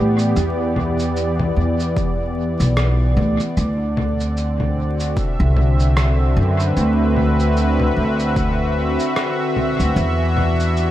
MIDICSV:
0, 0, Header, 1, 4, 480
1, 0, Start_track
1, 0, Tempo, 800000
1, 220, Time_signature, 4, 2, 24, 8
1, 6545, End_track
2, 0, Start_track
2, 0, Title_t, "Analog synth pad"
2, 0, Program_c, 0, 89
2, 0, Note_on_c, 0, 52, 77
2, 0, Note_on_c, 0, 59, 93
2, 0, Note_on_c, 0, 67, 73
2, 0, Note_on_c, 0, 74, 77
2, 0, Note_on_c, 0, 78, 73
2, 2136, Note_off_c, 0, 59, 0
2, 2137, Note_off_c, 0, 67, 0
2, 2140, Note_off_c, 0, 52, 0
2, 2142, Note_on_c, 0, 50, 93
2, 2455, Note_on_c, 0, 60, 70
2, 2869, Note_on_c, 0, 66, 73
2, 3058, Note_off_c, 0, 78, 0
2, 3062, Note_off_c, 0, 74, 0
2, 3062, Note_on_c, 0, 76, 71
2, 3808, Note_on_c, 0, 71, 88
2, 5976, Note_on_c, 0, 52, 87
2, 5981, Note_off_c, 0, 50, 0
2, 5982, Note_off_c, 0, 60, 0
2, 6137, Note_on_c, 0, 62, 83
2, 6452, Note_on_c, 0, 67, 80
2, 6545, Note_off_c, 0, 52, 0
2, 6545, Note_off_c, 0, 62, 0
2, 6545, Note_off_c, 0, 66, 0
2, 6545, Note_off_c, 0, 67, 0
2, 6545, Note_off_c, 0, 71, 0
2, 6545, Note_off_c, 0, 76, 0
2, 6545, End_track
3, 0, Start_track
3, 0, Title_t, "Upright bass"
3, 0, Program_c, 1, 32
3, 0, Note_on_c, 1, 45, 98
3, 194, Note_off_c, 1, 45, 0
3, 217, Note_on_c, 1, 40, 97
3, 919, Note_off_c, 1, 40, 0
3, 939, Note_on_c, 1, 40, 76
3, 1531, Note_off_c, 1, 40, 0
3, 1559, Note_on_c, 1, 35, 89
3, 1881, Note_off_c, 1, 35, 0
3, 1900, Note_on_c, 1, 38, 89
3, 2022, Note_off_c, 1, 38, 0
3, 2142, Note_on_c, 1, 38, 100
3, 3082, Note_off_c, 1, 38, 0
3, 3239, Note_on_c, 1, 36, 95
3, 3800, Note_off_c, 1, 36, 0
3, 3819, Note_on_c, 1, 42, 100
3, 4035, Note_off_c, 1, 42, 0
3, 4060, Note_on_c, 1, 38, 100
3, 4760, Note_off_c, 1, 38, 0
3, 4779, Note_on_c, 1, 38, 79
3, 5371, Note_off_c, 1, 38, 0
3, 5877, Note_on_c, 1, 38, 73
3, 5967, Note_off_c, 1, 38, 0
3, 5977, Note_on_c, 1, 40, 96
3, 6545, Note_off_c, 1, 40, 0
3, 6545, End_track
4, 0, Start_track
4, 0, Title_t, "Drums"
4, 113, Note_on_c, 9, 82, 54
4, 173, Note_off_c, 9, 82, 0
4, 217, Note_on_c, 9, 82, 40
4, 277, Note_off_c, 9, 82, 0
4, 458, Note_on_c, 9, 64, 74
4, 518, Note_off_c, 9, 64, 0
4, 597, Note_on_c, 9, 82, 57
4, 657, Note_off_c, 9, 82, 0
4, 699, Note_on_c, 9, 82, 40
4, 759, Note_off_c, 9, 82, 0
4, 837, Note_on_c, 9, 64, 76
4, 897, Note_off_c, 9, 64, 0
4, 1079, Note_on_c, 9, 82, 51
4, 1139, Note_off_c, 9, 82, 0
4, 1179, Note_on_c, 9, 36, 107
4, 1182, Note_on_c, 9, 82, 43
4, 1239, Note_off_c, 9, 36, 0
4, 1242, Note_off_c, 9, 82, 0
4, 1561, Note_on_c, 9, 82, 56
4, 1621, Note_off_c, 9, 82, 0
4, 1661, Note_on_c, 9, 37, 92
4, 1661, Note_on_c, 9, 82, 43
4, 1721, Note_off_c, 9, 37, 0
4, 1721, Note_off_c, 9, 82, 0
4, 1901, Note_on_c, 9, 64, 75
4, 1961, Note_off_c, 9, 64, 0
4, 2040, Note_on_c, 9, 82, 57
4, 2100, Note_off_c, 9, 82, 0
4, 2142, Note_on_c, 9, 82, 40
4, 2202, Note_off_c, 9, 82, 0
4, 2383, Note_on_c, 9, 64, 76
4, 2443, Note_off_c, 9, 64, 0
4, 2523, Note_on_c, 9, 82, 52
4, 2583, Note_off_c, 9, 82, 0
4, 2622, Note_on_c, 9, 82, 40
4, 2682, Note_off_c, 9, 82, 0
4, 2760, Note_on_c, 9, 64, 73
4, 2820, Note_off_c, 9, 64, 0
4, 3000, Note_on_c, 9, 82, 51
4, 3060, Note_off_c, 9, 82, 0
4, 3100, Note_on_c, 9, 36, 117
4, 3101, Note_on_c, 9, 82, 43
4, 3160, Note_off_c, 9, 36, 0
4, 3161, Note_off_c, 9, 82, 0
4, 3339, Note_on_c, 9, 64, 79
4, 3399, Note_off_c, 9, 64, 0
4, 3479, Note_on_c, 9, 82, 55
4, 3539, Note_off_c, 9, 82, 0
4, 3581, Note_on_c, 9, 37, 100
4, 3581, Note_on_c, 9, 82, 42
4, 3641, Note_off_c, 9, 37, 0
4, 3641, Note_off_c, 9, 82, 0
4, 3959, Note_on_c, 9, 82, 53
4, 4019, Note_off_c, 9, 82, 0
4, 4060, Note_on_c, 9, 82, 39
4, 4120, Note_off_c, 9, 82, 0
4, 4299, Note_on_c, 9, 64, 76
4, 4359, Note_off_c, 9, 64, 0
4, 4439, Note_on_c, 9, 82, 52
4, 4499, Note_off_c, 9, 82, 0
4, 4541, Note_on_c, 9, 82, 39
4, 4601, Note_off_c, 9, 82, 0
4, 4677, Note_on_c, 9, 64, 72
4, 4737, Note_off_c, 9, 64, 0
4, 4917, Note_on_c, 9, 82, 51
4, 4977, Note_off_c, 9, 82, 0
4, 5018, Note_on_c, 9, 36, 107
4, 5019, Note_on_c, 9, 82, 42
4, 5078, Note_off_c, 9, 36, 0
4, 5079, Note_off_c, 9, 82, 0
4, 5398, Note_on_c, 9, 82, 53
4, 5458, Note_off_c, 9, 82, 0
4, 5498, Note_on_c, 9, 37, 89
4, 5498, Note_on_c, 9, 82, 40
4, 5558, Note_off_c, 9, 37, 0
4, 5558, Note_off_c, 9, 82, 0
4, 5739, Note_on_c, 9, 64, 74
4, 5799, Note_off_c, 9, 64, 0
4, 5878, Note_on_c, 9, 82, 52
4, 5938, Note_off_c, 9, 82, 0
4, 5980, Note_on_c, 9, 82, 38
4, 6040, Note_off_c, 9, 82, 0
4, 6220, Note_on_c, 9, 64, 71
4, 6280, Note_off_c, 9, 64, 0
4, 6359, Note_on_c, 9, 82, 48
4, 6419, Note_off_c, 9, 82, 0
4, 6460, Note_on_c, 9, 82, 39
4, 6520, Note_off_c, 9, 82, 0
4, 6545, End_track
0, 0, End_of_file